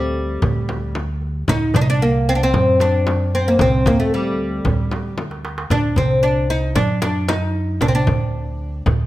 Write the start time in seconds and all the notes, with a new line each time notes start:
Already playing: D2 G3
0.29 darbuka ka
0.42 D2, frame drum, darbuka dum
0.56 darbuka ka
0.69 darbuka tek, frame drum
0.95 darbuka tek, frame drum
1.21 darbuka ka
1.48 D2 D#4, frame drum, darbuka dum
1.74 C2 D4, darbuka dum, frame drum
1.81 D#4
1.88 D4, darbuka ka
2.01 A#3, darbuka ka
2.29 C4
2.35 D4
2.43 C4
2.54 F#2, darbuka dum, frame drum
2.67 darbuka ka
2.80 D4, darbuka tek, frame drum
3.07 darbuka tek, frame drum
3.35 C4
3.48 A#3
3.59 C2 C4, frame drum, darbuka dum
3.86 D2 A#3, frame drum, darbuka dum
4.00 A3, darbuka ka
4.14 G3, darbuka ka
4.40 darbuka ka
4.53 darbuka ka
4.65 D2, frame drum, darbuka dum
4.80 darbuka ka
4.91 darbuka tek, frame drum
5.06 darbuka ka
5.18 darbuka tek, frame drum
5.31 darbuka ka
5.45 darbuka tek
5.58 darbuka ka
5.70 D2 D4, frame drum, darbuka dum
5.96 C2 C4, frame drum, darbuka dum
6.11 darbuka ka
6.23 D4, darbuka ka
6.50 D#4
6.63 darbuka ka
6.76 F#2 D4, frame drum, darbuka dum
6.90 darbuka ka
7.02 D4, darbuka tek, frame drum
7.16 darbuka ka
7.28 D#4, darbuka tek, frame drum
7.55 darbuka ka
7.81 C2 D4, frame drum, darbuka dum
7.88 C4
7.95 D4
8.07 D2, frame drum, darbuka dum
8.21 darbuka ka
8.35 darbuka ka
8.74 darbuka ka
8.86 D2, frame drum, darbuka dum
9.01 darbuka ka